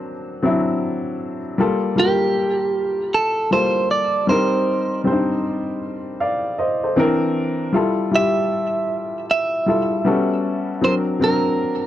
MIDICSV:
0, 0, Header, 1, 3, 480
1, 0, Start_track
1, 0, Key_signature, -1, "major"
1, 0, Tempo, 769231
1, 981, Time_signature, 4, 2, 24, 8
1, 7404, End_track
2, 0, Start_track
2, 0, Title_t, "Clean electric guitar"
2, 0, Program_c, 0, 27
2, 1245, Note_on_c, 0, 67, 79
2, 1962, Note_on_c, 0, 69, 83
2, 1974, Note_off_c, 0, 67, 0
2, 2198, Note_off_c, 0, 69, 0
2, 2201, Note_on_c, 0, 72, 91
2, 2437, Note_off_c, 0, 72, 0
2, 2440, Note_on_c, 0, 74, 92
2, 2676, Note_off_c, 0, 74, 0
2, 2679, Note_on_c, 0, 72, 78
2, 3125, Note_off_c, 0, 72, 0
2, 5089, Note_on_c, 0, 76, 89
2, 5770, Note_off_c, 0, 76, 0
2, 5809, Note_on_c, 0, 76, 96
2, 6764, Note_off_c, 0, 76, 0
2, 6767, Note_on_c, 0, 72, 89
2, 6828, Note_off_c, 0, 72, 0
2, 7012, Note_on_c, 0, 70, 75
2, 7404, Note_off_c, 0, 70, 0
2, 7404, End_track
3, 0, Start_track
3, 0, Title_t, "Grand piano"
3, 0, Program_c, 1, 0
3, 0, Control_c, 1, 64, 127
3, 0, Note_on_c, 1, 54, 68
3, 0, Note_on_c, 1, 58, 76
3, 0, Note_on_c, 1, 60, 57
3, 0, Note_on_c, 1, 62, 60
3, 0, Note_on_c, 1, 72, 68
3, 72, Note_off_c, 1, 54, 0
3, 76, Note_off_c, 1, 60, 0
3, 78, Note_off_c, 1, 62, 0
3, 80, Note_off_c, 1, 72, 0
3, 265, Note_on_c, 1, 54, 70
3, 270, Note_on_c, 1, 60, 68
3, 278, Note_on_c, 1, 62, 69
3, 283, Note_on_c, 1, 64, 83
3, 856, Note_off_c, 1, 54, 0
3, 858, Note_off_c, 1, 60, 0
3, 862, Note_off_c, 1, 62, 0
3, 864, Note_off_c, 1, 64, 0
3, 986, Note_on_c, 1, 55, 77
3, 988, Control_c, 1, 64, 0
3, 992, Note_off_c, 1, 58, 0
3, 992, Note_on_c, 1, 58, 73
3, 998, Note_on_c, 1, 65, 70
3, 1002, Note_on_c, 1, 69, 83
3, 1095, Control_c, 1, 64, 127
3, 1187, Note_off_c, 1, 55, 0
3, 1190, Note_off_c, 1, 58, 0
3, 1193, Note_off_c, 1, 65, 0
3, 1195, Note_off_c, 1, 69, 0
3, 1221, Note_on_c, 1, 55, 70
3, 1227, Note_on_c, 1, 58, 63
3, 1231, Note_on_c, 1, 65, 59
3, 1238, Note_on_c, 1, 69, 61
3, 1278, Note_on_c, 1, 70, 71
3, 1281, Note_off_c, 1, 69, 0
3, 1989, Note_off_c, 1, 55, 0
3, 1992, Note_off_c, 1, 58, 0
3, 1994, Note_off_c, 1, 65, 0
3, 2018, Note_off_c, 1, 70, 0
3, 2189, Note_on_c, 1, 55, 61
3, 2193, Note_on_c, 1, 58, 56
3, 2197, Note_on_c, 1, 65, 59
3, 2203, Note_on_c, 1, 69, 70
3, 2656, Note_off_c, 1, 55, 0
3, 2665, Note_on_c, 1, 55, 72
3, 2667, Note_off_c, 1, 58, 0
3, 2669, Note_off_c, 1, 65, 0
3, 2670, Control_c, 1, 64, 0
3, 2672, Note_off_c, 1, 69, 0
3, 2673, Note_on_c, 1, 60, 64
3, 2679, Note_on_c, 1, 63, 62
3, 2685, Note_on_c, 1, 70, 80
3, 2771, Control_c, 1, 64, 127
3, 3073, Note_off_c, 1, 55, 0
3, 3077, Note_off_c, 1, 60, 0
3, 3080, Note_off_c, 1, 63, 0
3, 3083, Note_off_c, 1, 70, 0
3, 3145, Note_on_c, 1, 55, 66
3, 3151, Note_on_c, 1, 60, 58
3, 3158, Note_on_c, 1, 62, 48
3, 3165, Note_on_c, 1, 72, 73
3, 3197, Note_on_c, 1, 63, 58
3, 3201, Note_off_c, 1, 62, 0
3, 3871, Note_on_c, 1, 77, 62
3, 3873, Note_off_c, 1, 72, 0
3, 3875, Note_on_c, 1, 74, 56
3, 3911, Note_off_c, 1, 55, 0
3, 3914, Note_off_c, 1, 60, 0
3, 3937, Note_off_c, 1, 63, 0
3, 4094, Note_off_c, 1, 77, 0
3, 4097, Note_off_c, 1, 74, 0
3, 4109, Note_on_c, 1, 75, 66
3, 4115, Note_on_c, 1, 72, 51
3, 4251, Note_off_c, 1, 75, 0
3, 4253, Note_off_c, 1, 72, 0
3, 4267, Note_on_c, 1, 72, 55
3, 4271, Note_on_c, 1, 69, 46
3, 4343, Note_on_c, 1, 52, 90
3, 4349, Note_on_c, 1, 60, 82
3, 4350, Control_c, 1, 64, 0
3, 4355, Note_on_c, 1, 62, 80
3, 4362, Note_on_c, 1, 70, 96
3, 4463, Control_c, 1, 64, 127
3, 4489, Note_off_c, 1, 72, 0
3, 4491, Note_off_c, 1, 69, 0
3, 4753, Note_off_c, 1, 52, 0
3, 4756, Note_off_c, 1, 60, 0
3, 4758, Note_off_c, 1, 62, 0
3, 4762, Note_off_c, 1, 70, 0
3, 4820, Note_on_c, 1, 55, 74
3, 4827, Note_on_c, 1, 64, 69
3, 4828, Control_c, 1, 64, 0
3, 4831, Note_on_c, 1, 65, 71
3, 4840, Note_on_c, 1, 69, 82
3, 4928, Control_c, 1, 64, 127
3, 5024, Note_off_c, 1, 55, 0
3, 5028, Note_off_c, 1, 64, 0
3, 5029, Note_off_c, 1, 65, 0
3, 5034, Note_off_c, 1, 69, 0
3, 5063, Note_on_c, 1, 55, 63
3, 5068, Note_on_c, 1, 64, 57
3, 5074, Note_on_c, 1, 65, 56
3, 5080, Note_on_c, 1, 67, 68
3, 5830, Note_off_c, 1, 55, 0
3, 5832, Note_off_c, 1, 64, 0
3, 5836, Note_off_c, 1, 65, 0
3, 5838, Note_off_c, 1, 67, 0
3, 6029, Note_on_c, 1, 55, 64
3, 6035, Note_on_c, 1, 64, 60
3, 6039, Note_on_c, 1, 65, 56
3, 6044, Note_on_c, 1, 69, 71
3, 6259, Note_off_c, 1, 55, 0
3, 6268, Note_off_c, 1, 64, 0
3, 6269, Note_on_c, 1, 55, 76
3, 6270, Note_off_c, 1, 65, 0
3, 6270, Control_c, 1, 64, 0
3, 6272, Note_on_c, 1, 59, 64
3, 6273, Note_off_c, 1, 69, 0
3, 6278, Note_on_c, 1, 61, 72
3, 6280, Note_on_c, 1, 66, 68
3, 6287, Note_on_c, 1, 69, 82
3, 6398, Control_c, 1, 64, 127
3, 6675, Note_off_c, 1, 55, 0
3, 6677, Note_off_c, 1, 59, 0
3, 6680, Note_off_c, 1, 61, 0
3, 6681, Note_off_c, 1, 66, 0
3, 6684, Note_off_c, 1, 69, 0
3, 6747, Note_on_c, 1, 54, 66
3, 6748, Control_c, 1, 64, 0
3, 6753, Note_on_c, 1, 60, 58
3, 6759, Note_on_c, 1, 62, 60
3, 6765, Note_on_c, 1, 70, 70
3, 6865, Control_c, 1, 64, 127
3, 6948, Note_off_c, 1, 54, 0
3, 6950, Note_off_c, 1, 60, 0
3, 6953, Note_off_c, 1, 62, 0
3, 6956, Note_off_c, 1, 70, 0
3, 6985, Note_on_c, 1, 54, 63
3, 6994, Note_on_c, 1, 60, 65
3, 7000, Note_on_c, 1, 62, 61
3, 7005, Note_on_c, 1, 70, 70
3, 7404, Note_off_c, 1, 54, 0
3, 7404, Note_off_c, 1, 60, 0
3, 7404, Note_off_c, 1, 62, 0
3, 7404, Note_off_c, 1, 70, 0
3, 7404, End_track
0, 0, End_of_file